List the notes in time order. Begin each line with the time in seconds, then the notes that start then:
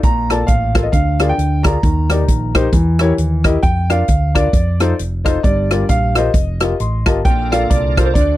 0.03 A#1 A#2 A#5, kick, closed hi-hat
0.30 F4 A4 A#4 D5 A5, cross-stick, closed hi-hat
0.47 A1 F5, kick, closed hi-hat
0.75 F4 A4 A#4 F5, kick, cross-stick, closed hi-hat
0.83 D#5
0.92 D2 D3 F5, kick, closed hi-hat
1.19 F4 G#4 A#4 D5, cross-stick, closed hi-hat
1.29 G5
1.38 D2, closed hi-hat
1.63 F4 G#4 A#4 D5 A#5, kick, cross-stick, closed hi-hat
1.83 D#2 D#3, kick, closed hi-hat
2.10 D#4 G4 A#4 D5, cross-stick, closed hi-hat
2.28 A#1, kick, closed hi-hat
2.55 D#4 G4 A#4 C5, kick, cross-stick, closed hi-hat
2.73 E2 E3, kick, closed hi-hat
2.99 E4 G4 A#4 C#5, cross-stick, closed hi-hat
3.18 D#2, closed hi-hat
3.44 E4 G4 A#4 D#5, kick, cross-stick, closed hi-hat
3.63 F2 G5, kick, closed hi-hat
3.90 D4 F4 A#4 D5 F5, cross-stick, closed hi-hat
4.08 D2, kick, closed hi-hat
4.35 D4 F4 A#4 D5 F5, kick, cross-stick, closed hi-hat
4.53 F2, kick, closed hi-hat
4.80 D#4 F4 A4 C5, cross-stick, closed hi-hat
4.99 F1, closed hi-hat
5.25 D#4 F4 A4 C5 D#5, kick, cross-stick, closed hi-hat
5.43 G1 G2 D5, kick, closed hi-hat
5.71 F4 G4 A#4 D5, cross-stick, closed hi-hat
5.89 A#1 F5, kick, closed hi-hat
6.15 F4 G4 A#4 C5 D#5, cross-stick, closed hi-hat
6.34 F1, kick, closed hi-hat
6.60 F4 G4 A#4 D#5, cross-stick, closed hi-hat
6.80 A1 C6, closed hi-hat
7.06 G1 F4 G4 A#4 D#5 A5, kick, cross-stick, closed hi-hat
7.25 A#1 A#2 C#4 F4 A4 A#4 G5, kick, closed hi-hat
7.32 D4
7.52 F4 A4 A#4 D5 F5, cross-stick, closed hi-hat
7.70 C2 D5, kick, closed hi-hat
7.97 F4 A4 A#4 C5, kick, cross-stick, closed hi-hat
8.05 C5
8.14 D2 D3 A3 D4 F4 C5 D5, kick, closed hi-hat
8.20 F#4